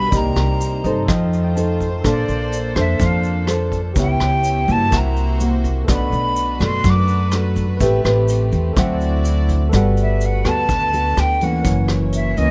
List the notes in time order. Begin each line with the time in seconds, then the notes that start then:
Already playing: B4 D5 F#5 B5
0.09 C2 A#3 D#4 A#4 C5 D5, kick, closed hi-hat, shaker
0.13 C3 A#3 D#4 G4 D#5 G5
0.17 A#5
0.36 C2, cross-stick, closed hi-hat, shaker
0.60 closed hi-hat, shaker
0.84 G2 D#4 A4 C5 D#5, kick, closed hi-hat, shaker
1.05 F2 A3 F4 A4 C5 F5, kick, cross-stick, closed hi-hat
1.09 F3 D#5 G5, shaker
1.33 closed hi-hat, shaker
1.44 G5
1.56 D#4 A4 C5 A5, closed hi-hat, shaker
1.80 kick, closed hi-hat, shaker
2.01 A#1 A#3 D4 A4 C5, kick, cross-stick, closed hi-hat, shaker
2.06 D5 F5
2.28 A#1, closed hi-hat, shaker
2.52 closed hi-hat, shaker
2.76 F2 D4 A4 C5 E5, kick, cross-stick, closed hi-hat, shaker
2.99 F2 F3, kick, closed hi-hat, shaker
3.06 F5
3.23 closed hi-hat, shaker
3.47 D4 A4 C5, cross-stick, closed hi-hat, shaker
3.72 kick, closed hi-hat, shaker
3.93 C#2 C#3 B3 E4 G4 B4 C#5, kick, closed hi-hat, shaker
3.97 G4 E5
4.02 G5
4.20 C#2, cross-stick, closed hi-hat, shaker
4.44 closed hi-hat, shaker
4.68 G2 A#3 E4 F#4 A5, kick, closed hi-hat, shaker
4.90 C2 C3 A#3 F#4 A#4 C5 E5 F#5, kick, cross-stick, closed hi-hat, shaker
4.97 A#5
5.16 closed hi-hat, shaker
5.40 A#3 E4 F#4, closed hi-hat, shaker
5.64 kick, closed hi-hat, shaker
5.85 B1 B2 A3 D4 F#4 A4 B4, kick, cross-stick, closed hi-hat, shaker
5.89 D4 F#4 B4 D5 F#5
5.93 B5
6.12 B1, closed hi-hat, shaker
6.36 closed hi-hat, shaker
6.60 F#2 A3 D4 F#4, kick, cross-stick, closed hi-hat, shaker
6.65 C6
6.84 F#2 F#3, kick, closed hi-hat, shaker
6.90 D6
7.08 closed hi-hat, shaker
7.32 A3 D4 F#4, cross-stick, closed hi-hat, shaker
7.56 kick, closed hi-hat, shaker
7.77 A1 A3 C4 B4 E5, kick, closed hi-hat, shaker
7.81 C4 G4 B4 G5
8.05 A1 C4 G4 B4, cross-stick, closed hi-hat, shaker
8.28 closed hi-hat, shaker
8.52 E2, kick, closed hi-hat, shaker
8.73 D2 A4 C5 D5, kick, cross-stick, closed hi-hat, shaker
8.77 D3 F#3 C4 E4 F#4 E5 F#5
9.00 closed hi-hat, shaker
9.25 closed hi-hat, shaker
9.49 kick, closed hi-hat, shaker
9.69 G1 G3 A3 B3 F#4 A4 B4, kick, cross-stick, closed hi-hat, shaker
9.74 F#4 D5 F#5
9.97 closed hi-hat, shaker
10.02 E5
10.21 closed hi-hat, shaker
10.26 F#5
10.45 D2 B3 F#4 A4, cross-stick, closed hi-hat, shaker
10.49 A5
10.69 D2 D3, kick, closed hi-hat, shaker
10.93 B3 F#4 A4, closed hi-hat, shaker
11.17 D2 G5, cross-stick, closed hi-hat, shaker
11.41 E3 A#3 C#4 F#5, closed hi-hat, shaker
11.62 F#1 F#2 A#3 E4 F#4 A#4 C#5, kick, closed hi-hat, shaker
11.66 E4 C#5 G#5
11.88 cross-stick, closed hi-hat, shaker
12.13 E5, closed hi-hat, shaker
12.37 C#2 E3 A#3 C#4 D#5, closed hi-hat, shaker